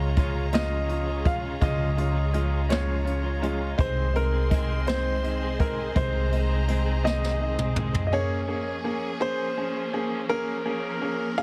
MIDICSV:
0, 0, Header, 1, 7, 480
1, 0, Start_track
1, 0, Key_signature, -5, "minor"
1, 0, Tempo, 723240
1, 1073, Time_signature, 6, 3, 24, 8
1, 7584, End_track
2, 0, Start_track
2, 0, Title_t, "Grand piano"
2, 0, Program_c, 0, 0
2, 361, Note_on_c, 0, 75, 91
2, 840, Note_on_c, 0, 77, 94
2, 851, Note_off_c, 0, 75, 0
2, 893, Note_off_c, 0, 77, 0
2, 1084, Note_on_c, 0, 75, 88
2, 1797, Note_on_c, 0, 73, 81
2, 1820, Note_off_c, 0, 75, 0
2, 2249, Note_off_c, 0, 73, 0
2, 2524, Note_on_c, 0, 72, 105
2, 2761, Note_on_c, 0, 70, 96
2, 2766, Note_off_c, 0, 72, 0
2, 3210, Note_off_c, 0, 70, 0
2, 3238, Note_on_c, 0, 72, 110
2, 3689, Note_off_c, 0, 72, 0
2, 3718, Note_on_c, 0, 70, 84
2, 3961, Note_on_c, 0, 72, 98
2, 3963, Note_off_c, 0, 70, 0
2, 4678, Note_on_c, 0, 75, 91
2, 5131, Note_off_c, 0, 72, 0
2, 5345, Note_off_c, 0, 75, 0
2, 5355, Note_on_c, 0, 75, 65
2, 5397, Note_off_c, 0, 75, 0
2, 5397, Note_on_c, 0, 73, 93
2, 6089, Note_off_c, 0, 73, 0
2, 6118, Note_on_c, 0, 72, 106
2, 6809, Note_off_c, 0, 72, 0
2, 6832, Note_on_c, 0, 70, 98
2, 7551, Note_on_c, 0, 77, 111
2, 7574, Note_off_c, 0, 70, 0
2, 7584, Note_off_c, 0, 77, 0
2, 7584, End_track
3, 0, Start_track
3, 0, Title_t, "String section"
3, 0, Program_c, 1, 48
3, 0, Note_on_c, 1, 68, 79
3, 0, Note_on_c, 1, 73, 73
3, 0, Note_on_c, 1, 82, 77
3, 2485, Note_off_c, 1, 82, 0
3, 2487, Note_off_c, 1, 68, 0
3, 2488, Note_off_c, 1, 73, 0
3, 2512, Note_on_c, 1, 75, 74
3, 2514, Note_on_c, 1, 84, 86
3, 2517, Note_on_c, 1, 72, 74
3, 2519, Note_on_c, 1, 68, 87
3, 3939, Note_off_c, 1, 84, 0
3, 3958, Note_on_c, 1, 82, 84
3, 5366, Note_off_c, 1, 75, 0
3, 5368, Note_off_c, 1, 72, 0
3, 5370, Note_off_c, 1, 68, 0
3, 5381, Note_off_c, 1, 82, 0
3, 5387, Note_on_c, 1, 53, 91
3, 5388, Note_on_c, 1, 58, 78
3, 5388, Note_on_c, 1, 68, 95
3, 5390, Note_on_c, 1, 61, 78
3, 6816, Note_off_c, 1, 68, 0
3, 6839, Note_on_c, 1, 70, 94
3, 7584, Note_off_c, 1, 53, 0
3, 7584, Note_off_c, 1, 58, 0
3, 7584, Note_off_c, 1, 61, 0
3, 7584, Note_off_c, 1, 70, 0
3, 7584, End_track
4, 0, Start_track
4, 0, Title_t, "Grand piano"
4, 0, Program_c, 2, 0
4, 112, Note_on_c, 2, 56, 65
4, 112, Note_on_c, 2, 61, 66
4, 113, Note_on_c, 2, 65, 75
4, 284, Note_off_c, 2, 56, 0
4, 284, Note_off_c, 2, 61, 0
4, 285, Note_off_c, 2, 65, 0
4, 349, Note_on_c, 2, 56, 81
4, 350, Note_on_c, 2, 61, 72
4, 355, Note_on_c, 2, 65, 96
4, 523, Note_off_c, 2, 56, 0
4, 523, Note_off_c, 2, 61, 0
4, 526, Note_off_c, 2, 65, 0
4, 590, Note_on_c, 2, 61, 60
4, 597, Note_on_c, 2, 65, 70
4, 763, Note_off_c, 2, 61, 0
4, 767, Note_off_c, 2, 65, 0
4, 829, Note_on_c, 2, 56, 74
4, 830, Note_on_c, 2, 61, 65
4, 831, Note_on_c, 2, 65, 87
4, 1003, Note_off_c, 2, 56, 0
4, 1003, Note_off_c, 2, 61, 0
4, 1003, Note_off_c, 2, 65, 0
4, 1069, Note_on_c, 2, 56, 93
4, 1071, Note_on_c, 2, 61, 87
4, 1073, Note_on_c, 2, 65, 105
4, 1242, Note_off_c, 2, 56, 0
4, 1244, Note_off_c, 2, 61, 0
4, 1244, Note_off_c, 2, 65, 0
4, 1309, Note_on_c, 2, 61, 62
4, 1310, Note_on_c, 2, 56, 72
4, 1315, Note_on_c, 2, 65, 81
4, 1483, Note_off_c, 2, 56, 0
4, 1483, Note_off_c, 2, 61, 0
4, 1486, Note_off_c, 2, 65, 0
4, 1549, Note_on_c, 2, 56, 68
4, 1551, Note_on_c, 2, 61, 61
4, 1553, Note_on_c, 2, 65, 75
4, 1723, Note_off_c, 2, 56, 0
4, 1724, Note_off_c, 2, 61, 0
4, 1725, Note_off_c, 2, 65, 0
4, 1786, Note_on_c, 2, 56, 86
4, 1788, Note_on_c, 2, 61, 85
4, 1790, Note_on_c, 2, 65, 92
4, 1961, Note_off_c, 2, 56, 0
4, 1962, Note_off_c, 2, 61, 0
4, 1963, Note_off_c, 2, 65, 0
4, 2022, Note_on_c, 2, 61, 63
4, 2027, Note_on_c, 2, 65, 68
4, 2199, Note_off_c, 2, 61, 0
4, 2202, Note_off_c, 2, 65, 0
4, 2270, Note_on_c, 2, 56, 76
4, 2272, Note_on_c, 2, 61, 73
4, 2275, Note_on_c, 2, 65, 89
4, 2443, Note_off_c, 2, 56, 0
4, 2444, Note_off_c, 2, 61, 0
4, 2446, Note_off_c, 2, 65, 0
4, 2506, Note_on_c, 2, 56, 99
4, 2508, Note_on_c, 2, 60, 95
4, 2511, Note_on_c, 2, 63, 107
4, 2681, Note_off_c, 2, 56, 0
4, 2682, Note_off_c, 2, 60, 0
4, 2684, Note_off_c, 2, 63, 0
4, 2745, Note_on_c, 2, 56, 70
4, 2748, Note_on_c, 2, 60, 70
4, 2751, Note_on_c, 2, 63, 77
4, 2920, Note_off_c, 2, 56, 0
4, 2922, Note_off_c, 2, 60, 0
4, 2924, Note_off_c, 2, 63, 0
4, 2986, Note_on_c, 2, 60, 64
4, 2987, Note_on_c, 2, 56, 72
4, 2989, Note_on_c, 2, 63, 81
4, 3161, Note_off_c, 2, 60, 0
4, 3162, Note_off_c, 2, 56, 0
4, 3163, Note_off_c, 2, 63, 0
4, 3229, Note_on_c, 2, 56, 81
4, 3231, Note_on_c, 2, 60, 83
4, 3233, Note_on_c, 2, 63, 94
4, 3403, Note_off_c, 2, 56, 0
4, 3404, Note_off_c, 2, 60, 0
4, 3405, Note_off_c, 2, 63, 0
4, 3472, Note_on_c, 2, 60, 65
4, 3474, Note_on_c, 2, 63, 71
4, 3644, Note_off_c, 2, 60, 0
4, 3645, Note_off_c, 2, 63, 0
4, 3708, Note_on_c, 2, 56, 76
4, 3711, Note_on_c, 2, 63, 85
4, 3712, Note_on_c, 2, 60, 72
4, 3882, Note_off_c, 2, 56, 0
4, 3884, Note_off_c, 2, 60, 0
4, 3884, Note_off_c, 2, 63, 0
4, 3953, Note_on_c, 2, 56, 101
4, 3957, Note_on_c, 2, 60, 93
4, 3958, Note_on_c, 2, 63, 100
4, 4125, Note_off_c, 2, 56, 0
4, 4127, Note_off_c, 2, 60, 0
4, 4127, Note_off_c, 2, 63, 0
4, 4193, Note_on_c, 2, 56, 65
4, 4193, Note_on_c, 2, 60, 66
4, 4195, Note_on_c, 2, 63, 73
4, 4365, Note_off_c, 2, 56, 0
4, 4365, Note_off_c, 2, 60, 0
4, 4366, Note_off_c, 2, 63, 0
4, 4432, Note_on_c, 2, 60, 62
4, 4433, Note_on_c, 2, 56, 69
4, 4435, Note_on_c, 2, 63, 75
4, 4604, Note_off_c, 2, 60, 0
4, 4605, Note_off_c, 2, 56, 0
4, 4606, Note_off_c, 2, 63, 0
4, 4673, Note_on_c, 2, 56, 87
4, 4674, Note_on_c, 2, 60, 80
4, 4677, Note_on_c, 2, 63, 92
4, 4845, Note_off_c, 2, 56, 0
4, 4845, Note_off_c, 2, 60, 0
4, 4847, Note_off_c, 2, 63, 0
4, 4912, Note_on_c, 2, 60, 63
4, 4914, Note_on_c, 2, 63, 64
4, 5084, Note_off_c, 2, 60, 0
4, 5085, Note_off_c, 2, 63, 0
4, 5143, Note_on_c, 2, 56, 70
4, 5148, Note_on_c, 2, 60, 65
4, 5150, Note_on_c, 2, 63, 84
4, 5320, Note_off_c, 2, 56, 0
4, 5322, Note_off_c, 2, 60, 0
4, 5323, Note_off_c, 2, 63, 0
4, 5390, Note_on_c, 2, 58, 98
4, 5394, Note_on_c, 2, 61, 97
4, 5395, Note_on_c, 2, 68, 114
4, 5563, Note_off_c, 2, 58, 0
4, 5565, Note_off_c, 2, 61, 0
4, 5566, Note_off_c, 2, 68, 0
4, 5627, Note_on_c, 2, 58, 79
4, 5631, Note_on_c, 2, 68, 79
4, 5632, Note_on_c, 2, 61, 71
4, 5801, Note_off_c, 2, 58, 0
4, 5804, Note_off_c, 2, 61, 0
4, 5804, Note_off_c, 2, 68, 0
4, 5867, Note_on_c, 2, 58, 82
4, 5872, Note_on_c, 2, 61, 66
4, 5873, Note_on_c, 2, 68, 84
4, 6042, Note_off_c, 2, 58, 0
4, 6044, Note_off_c, 2, 61, 0
4, 6045, Note_off_c, 2, 68, 0
4, 6107, Note_on_c, 2, 58, 98
4, 6109, Note_on_c, 2, 61, 79
4, 6111, Note_on_c, 2, 68, 109
4, 6282, Note_off_c, 2, 58, 0
4, 6283, Note_off_c, 2, 61, 0
4, 6284, Note_off_c, 2, 68, 0
4, 6354, Note_on_c, 2, 61, 72
4, 6357, Note_on_c, 2, 68, 79
4, 6525, Note_off_c, 2, 61, 0
4, 6526, Note_off_c, 2, 68, 0
4, 6591, Note_on_c, 2, 58, 75
4, 6593, Note_on_c, 2, 61, 76
4, 6596, Note_on_c, 2, 68, 87
4, 6764, Note_off_c, 2, 58, 0
4, 6765, Note_off_c, 2, 61, 0
4, 6766, Note_off_c, 2, 68, 0
4, 6831, Note_on_c, 2, 58, 105
4, 6833, Note_on_c, 2, 61, 96
4, 6833, Note_on_c, 2, 68, 107
4, 7004, Note_off_c, 2, 58, 0
4, 7005, Note_off_c, 2, 61, 0
4, 7005, Note_off_c, 2, 68, 0
4, 7069, Note_on_c, 2, 58, 82
4, 7072, Note_on_c, 2, 61, 71
4, 7073, Note_on_c, 2, 68, 89
4, 7243, Note_off_c, 2, 58, 0
4, 7244, Note_off_c, 2, 61, 0
4, 7244, Note_off_c, 2, 68, 0
4, 7308, Note_on_c, 2, 58, 84
4, 7311, Note_on_c, 2, 61, 70
4, 7313, Note_on_c, 2, 68, 85
4, 7482, Note_off_c, 2, 58, 0
4, 7483, Note_off_c, 2, 61, 0
4, 7485, Note_off_c, 2, 68, 0
4, 7552, Note_on_c, 2, 58, 89
4, 7554, Note_on_c, 2, 61, 87
4, 7554, Note_on_c, 2, 68, 107
4, 7584, Note_off_c, 2, 58, 0
4, 7584, Note_off_c, 2, 61, 0
4, 7584, Note_off_c, 2, 68, 0
4, 7584, End_track
5, 0, Start_track
5, 0, Title_t, "Clean electric guitar"
5, 0, Program_c, 3, 27
5, 0, Note_on_c, 3, 61, 53
5, 0, Note_on_c, 3, 65, 58
5, 10, Note_on_c, 3, 56, 45
5, 108, Note_on_c, 3, 53, 61
5, 110, Note_off_c, 3, 56, 0
5, 111, Note_off_c, 3, 65, 0
5, 115, Note_off_c, 3, 61, 0
5, 118, Note_on_c, 3, 56, 66
5, 123, Note_on_c, 3, 61, 71
5, 132, Note_on_c, 3, 65, 77
5, 225, Note_off_c, 3, 65, 0
5, 231, Note_off_c, 3, 53, 0
5, 233, Note_on_c, 3, 65, 50
5, 234, Note_off_c, 3, 61, 0
5, 235, Note_off_c, 3, 56, 0
5, 242, Note_on_c, 3, 61, 47
5, 251, Note_on_c, 3, 56, 45
5, 350, Note_off_c, 3, 56, 0
5, 352, Note_on_c, 3, 49, 79
5, 353, Note_off_c, 3, 61, 0
5, 353, Note_off_c, 3, 65, 0
5, 353, Note_on_c, 3, 53, 79
5, 358, Note_on_c, 3, 56, 77
5, 361, Note_on_c, 3, 61, 86
5, 364, Note_on_c, 3, 65, 81
5, 701, Note_off_c, 3, 65, 0
5, 709, Note_on_c, 3, 65, 50
5, 712, Note_off_c, 3, 49, 0
5, 713, Note_off_c, 3, 53, 0
5, 715, Note_off_c, 3, 56, 0
5, 715, Note_off_c, 3, 61, 0
5, 723, Note_on_c, 3, 61, 54
5, 732, Note_on_c, 3, 56, 45
5, 831, Note_off_c, 3, 56, 0
5, 831, Note_off_c, 3, 65, 0
5, 831, Note_on_c, 3, 53, 61
5, 838, Note_off_c, 3, 61, 0
5, 839, Note_on_c, 3, 56, 61
5, 846, Note_on_c, 3, 61, 59
5, 851, Note_on_c, 3, 65, 59
5, 943, Note_off_c, 3, 65, 0
5, 951, Note_on_c, 3, 65, 54
5, 952, Note_off_c, 3, 53, 0
5, 956, Note_off_c, 3, 56, 0
5, 956, Note_off_c, 3, 61, 0
5, 964, Note_on_c, 3, 61, 47
5, 970, Note_on_c, 3, 56, 42
5, 1068, Note_off_c, 3, 56, 0
5, 1068, Note_on_c, 3, 49, 76
5, 1070, Note_off_c, 3, 61, 0
5, 1072, Note_off_c, 3, 65, 0
5, 1073, Note_on_c, 3, 53, 73
5, 1076, Note_on_c, 3, 56, 78
5, 1078, Note_on_c, 3, 61, 78
5, 1084, Note_on_c, 3, 65, 94
5, 1418, Note_off_c, 3, 65, 0
5, 1426, Note_on_c, 3, 65, 47
5, 1431, Note_off_c, 3, 49, 0
5, 1431, Note_off_c, 3, 61, 0
5, 1433, Note_off_c, 3, 53, 0
5, 1435, Note_off_c, 3, 56, 0
5, 1439, Note_on_c, 3, 61, 47
5, 1447, Note_on_c, 3, 56, 44
5, 1550, Note_off_c, 3, 65, 0
5, 1554, Note_off_c, 3, 56, 0
5, 1556, Note_off_c, 3, 61, 0
5, 1556, Note_on_c, 3, 53, 61
5, 1562, Note_on_c, 3, 56, 61
5, 1569, Note_on_c, 3, 61, 63
5, 1575, Note_on_c, 3, 65, 59
5, 1664, Note_off_c, 3, 65, 0
5, 1672, Note_on_c, 3, 65, 47
5, 1673, Note_off_c, 3, 61, 0
5, 1675, Note_off_c, 3, 53, 0
5, 1678, Note_off_c, 3, 56, 0
5, 1681, Note_on_c, 3, 61, 47
5, 1692, Note_on_c, 3, 56, 40
5, 1789, Note_off_c, 3, 56, 0
5, 1789, Note_on_c, 3, 49, 75
5, 1792, Note_off_c, 3, 61, 0
5, 1792, Note_off_c, 3, 65, 0
5, 1793, Note_on_c, 3, 53, 82
5, 1797, Note_on_c, 3, 56, 77
5, 1800, Note_on_c, 3, 61, 86
5, 1806, Note_on_c, 3, 65, 80
5, 2138, Note_off_c, 3, 65, 0
5, 2145, Note_on_c, 3, 65, 49
5, 2150, Note_off_c, 3, 61, 0
5, 2151, Note_off_c, 3, 49, 0
5, 2153, Note_off_c, 3, 53, 0
5, 2155, Note_off_c, 3, 56, 0
5, 2157, Note_on_c, 3, 61, 47
5, 2163, Note_on_c, 3, 56, 47
5, 2265, Note_off_c, 3, 56, 0
5, 2268, Note_on_c, 3, 53, 58
5, 2269, Note_off_c, 3, 65, 0
5, 2273, Note_on_c, 3, 56, 61
5, 2274, Note_off_c, 3, 61, 0
5, 2282, Note_on_c, 3, 61, 61
5, 2288, Note_on_c, 3, 65, 66
5, 2384, Note_off_c, 3, 65, 0
5, 2391, Note_off_c, 3, 53, 0
5, 2392, Note_on_c, 3, 65, 52
5, 2393, Note_off_c, 3, 56, 0
5, 2397, Note_off_c, 3, 61, 0
5, 2405, Note_on_c, 3, 61, 45
5, 2413, Note_on_c, 3, 56, 39
5, 2512, Note_off_c, 3, 56, 0
5, 2512, Note_on_c, 3, 48, 79
5, 2513, Note_off_c, 3, 65, 0
5, 2517, Note_on_c, 3, 51, 76
5, 2519, Note_off_c, 3, 61, 0
5, 2520, Note_on_c, 3, 56, 83
5, 2526, Note_on_c, 3, 60, 86
5, 2527, Note_on_c, 3, 68, 85
5, 2861, Note_off_c, 3, 68, 0
5, 2869, Note_on_c, 3, 68, 54
5, 2873, Note_off_c, 3, 48, 0
5, 2873, Note_off_c, 3, 60, 0
5, 2875, Note_off_c, 3, 51, 0
5, 2877, Note_off_c, 3, 56, 0
5, 2881, Note_on_c, 3, 60, 55
5, 2890, Note_on_c, 3, 56, 48
5, 2991, Note_off_c, 3, 68, 0
5, 2995, Note_off_c, 3, 56, 0
5, 2996, Note_on_c, 3, 51, 56
5, 2997, Note_off_c, 3, 60, 0
5, 3003, Note_on_c, 3, 56, 66
5, 3008, Note_on_c, 3, 60, 66
5, 3015, Note_on_c, 3, 68, 74
5, 3109, Note_off_c, 3, 68, 0
5, 3115, Note_off_c, 3, 51, 0
5, 3117, Note_on_c, 3, 68, 51
5, 3118, Note_off_c, 3, 56, 0
5, 3120, Note_off_c, 3, 60, 0
5, 3127, Note_on_c, 3, 60, 49
5, 3135, Note_on_c, 3, 56, 47
5, 3235, Note_off_c, 3, 68, 0
5, 3236, Note_off_c, 3, 56, 0
5, 3237, Note_on_c, 3, 48, 81
5, 3239, Note_on_c, 3, 51, 86
5, 3240, Note_off_c, 3, 60, 0
5, 3243, Note_on_c, 3, 56, 87
5, 3248, Note_on_c, 3, 60, 84
5, 3249, Note_on_c, 3, 68, 87
5, 3585, Note_off_c, 3, 68, 0
5, 3593, Note_on_c, 3, 68, 54
5, 3595, Note_off_c, 3, 48, 0
5, 3596, Note_off_c, 3, 51, 0
5, 3596, Note_off_c, 3, 60, 0
5, 3598, Note_off_c, 3, 56, 0
5, 3604, Note_on_c, 3, 60, 47
5, 3615, Note_on_c, 3, 56, 45
5, 3712, Note_off_c, 3, 56, 0
5, 3713, Note_off_c, 3, 68, 0
5, 3713, Note_on_c, 3, 51, 60
5, 3718, Note_off_c, 3, 60, 0
5, 3720, Note_on_c, 3, 56, 58
5, 3727, Note_on_c, 3, 60, 67
5, 3732, Note_on_c, 3, 68, 61
5, 3826, Note_off_c, 3, 68, 0
5, 3833, Note_off_c, 3, 51, 0
5, 3834, Note_on_c, 3, 68, 50
5, 3835, Note_off_c, 3, 60, 0
5, 3837, Note_off_c, 3, 56, 0
5, 3843, Note_on_c, 3, 60, 46
5, 3853, Note_on_c, 3, 56, 43
5, 3950, Note_on_c, 3, 48, 88
5, 3951, Note_off_c, 3, 56, 0
5, 3954, Note_off_c, 3, 60, 0
5, 3954, Note_off_c, 3, 68, 0
5, 3955, Note_on_c, 3, 51, 79
5, 3959, Note_on_c, 3, 56, 85
5, 3962, Note_on_c, 3, 60, 82
5, 3965, Note_on_c, 3, 68, 91
5, 4302, Note_off_c, 3, 68, 0
5, 4310, Note_on_c, 3, 68, 48
5, 4312, Note_off_c, 3, 48, 0
5, 4314, Note_off_c, 3, 51, 0
5, 4314, Note_off_c, 3, 60, 0
5, 4316, Note_off_c, 3, 56, 0
5, 4322, Note_on_c, 3, 60, 50
5, 4329, Note_on_c, 3, 56, 43
5, 4428, Note_off_c, 3, 56, 0
5, 4429, Note_on_c, 3, 51, 64
5, 4431, Note_off_c, 3, 68, 0
5, 4434, Note_off_c, 3, 60, 0
5, 4436, Note_on_c, 3, 56, 56
5, 4442, Note_on_c, 3, 60, 67
5, 4449, Note_on_c, 3, 68, 68
5, 4541, Note_off_c, 3, 68, 0
5, 4549, Note_on_c, 3, 68, 53
5, 4551, Note_off_c, 3, 51, 0
5, 4554, Note_off_c, 3, 56, 0
5, 4555, Note_off_c, 3, 60, 0
5, 4563, Note_on_c, 3, 60, 53
5, 4571, Note_on_c, 3, 56, 47
5, 4668, Note_on_c, 3, 48, 81
5, 4669, Note_off_c, 3, 56, 0
5, 4671, Note_off_c, 3, 60, 0
5, 4671, Note_off_c, 3, 68, 0
5, 4675, Note_on_c, 3, 51, 84
5, 4677, Note_on_c, 3, 56, 88
5, 4679, Note_on_c, 3, 60, 82
5, 4682, Note_on_c, 3, 68, 94
5, 5025, Note_off_c, 3, 68, 0
5, 5030, Note_off_c, 3, 48, 0
5, 5033, Note_on_c, 3, 68, 60
5, 5034, Note_off_c, 3, 51, 0
5, 5035, Note_off_c, 3, 56, 0
5, 5036, Note_off_c, 3, 60, 0
5, 5045, Note_on_c, 3, 60, 53
5, 5055, Note_on_c, 3, 56, 43
5, 5153, Note_off_c, 3, 68, 0
5, 5154, Note_off_c, 3, 56, 0
5, 5155, Note_on_c, 3, 51, 67
5, 5159, Note_off_c, 3, 60, 0
5, 5162, Note_on_c, 3, 56, 64
5, 5168, Note_on_c, 3, 60, 67
5, 5172, Note_on_c, 3, 68, 70
5, 5259, Note_off_c, 3, 68, 0
5, 5267, Note_on_c, 3, 68, 51
5, 5268, Note_off_c, 3, 60, 0
5, 5274, Note_off_c, 3, 51, 0
5, 5276, Note_on_c, 3, 60, 47
5, 5278, Note_off_c, 3, 56, 0
5, 5286, Note_on_c, 3, 56, 47
5, 5390, Note_off_c, 3, 68, 0
5, 5395, Note_off_c, 3, 60, 0
5, 5400, Note_off_c, 3, 56, 0
5, 7584, End_track
6, 0, Start_track
6, 0, Title_t, "Upright bass"
6, 0, Program_c, 4, 32
6, 0, Note_on_c, 4, 37, 88
6, 1047, Note_off_c, 4, 37, 0
6, 1070, Note_on_c, 4, 37, 83
6, 2485, Note_off_c, 4, 37, 0
6, 2515, Note_on_c, 4, 36, 93
6, 3928, Note_off_c, 4, 36, 0
6, 3954, Note_on_c, 4, 36, 89
6, 5367, Note_off_c, 4, 36, 0
6, 7584, End_track
7, 0, Start_track
7, 0, Title_t, "Drums"
7, 110, Note_on_c, 9, 42, 73
7, 113, Note_on_c, 9, 36, 81
7, 176, Note_off_c, 9, 42, 0
7, 179, Note_off_c, 9, 36, 0
7, 349, Note_on_c, 9, 42, 85
7, 363, Note_on_c, 9, 38, 98
7, 415, Note_off_c, 9, 42, 0
7, 429, Note_off_c, 9, 38, 0
7, 590, Note_on_c, 9, 42, 48
7, 657, Note_off_c, 9, 42, 0
7, 831, Note_on_c, 9, 42, 60
7, 833, Note_on_c, 9, 36, 91
7, 897, Note_off_c, 9, 42, 0
7, 899, Note_off_c, 9, 36, 0
7, 1071, Note_on_c, 9, 42, 63
7, 1072, Note_on_c, 9, 36, 105
7, 1138, Note_off_c, 9, 36, 0
7, 1138, Note_off_c, 9, 42, 0
7, 1313, Note_on_c, 9, 42, 50
7, 1380, Note_off_c, 9, 42, 0
7, 1552, Note_on_c, 9, 42, 74
7, 1619, Note_off_c, 9, 42, 0
7, 1791, Note_on_c, 9, 42, 82
7, 1805, Note_on_c, 9, 38, 106
7, 1858, Note_off_c, 9, 42, 0
7, 1872, Note_off_c, 9, 38, 0
7, 2036, Note_on_c, 9, 42, 48
7, 2103, Note_off_c, 9, 42, 0
7, 2276, Note_on_c, 9, 42, 60
7, 2343, Note_off_c, 9, 42, 0
7, 2513, Note_on_c, 9, 36, 112
7, 2514, Note_on_c, 9, 42, 70
7, 2579, Note_off_c, 9, 36, 0
7, 2580, Note_off_c, 9, 42, 0
7, 2755, Note_on_c, 9, 42, 51
7, 2822, Note_off_c, 9, 42, 0
7, 2993, Note_on_c, 9, 42, 79
7, 2994, Note_on_c, 9, 36, 84
7, 3059, Note_off_c, 9, 42, 0
7, 3061, Note_off_c, 9, 36, 0
7, 3232, Note_on_c, 9, 42, 76
7, 3246, Note_on_c, 9, 38, 109
7, 3299, Note_off_c, 9, 42, 0
7, 3313, Note_off_c, 9, 38, 0
7, 3478, Note_on_c, 9, 42, 46
7, 3544, Note_off_c, 9, 42, 0
7, 3715, Note_on_c, 9, 36, 89
7, 3715, Note_on_c, 9, 42, 63
7, 3781, Note_off_c, 9, 42, 0
7, 3782, Note_off_c, 9, 36, 0
7, 3953, Note_on_c, 9, 42, 73
7, 3954, Note_on_c, 9, 36, 94
7, 4019, Note_off_c, 9, 42, 0
7, 4021, Note_off_c, 9, 36, 0
7, 4196, Note_on_c, 9, 42, 53
7, 4262, Note_off_c, 9, 42, 0
7, 4434, Note_on_c, 9, 42, 80
7, 4501, Note_off_c, 9, 42, 0
7, 4689, Note_on_c, 9, 38, 61
7, 4756, Note_off_c, 9, 38, 0
7, 4807, Note_on_c, 9, 38, 58
7, 4873, Note_off_c, 9, 38, 0
7, 5034, Note_on_c, 9, 47, 80
7, 5101, Note_off_c, 9, 47, 0
7, 5151, Note_on_c, 9, 45, 100
7, 5218, Note_off_c, 9, 45, 0
7, 5273, Note_on_c, 9, 43, 94
7, 5339, Note_off_c, 9, 43, 0
7, 7584, End_track
0, 0, End_of_file